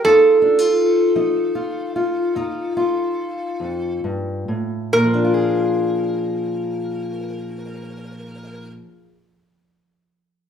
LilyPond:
<<
  \new Staff \with { instrumentName = "Resonator guitar played with a steel bar" } { \time 12/8 \key f \dorian \tempo 4. = 43 a'1~ a'4 r4 | bes'1. | }
  \new Staff \with { instrumentName = "Steel-string acoustic guitar" } { \time 12/8 \key f \dorian << { <ees' f'>8 d'16 f'8. ees'8 f'8 f'8 <ees' f'>8 f'2~ f'8 | <f d' f' aes'>1. | } \\ { f,4 r8 f4 r8 f,4 r8 f,8 g,8 a,8 | bes,1. | } >> }
>>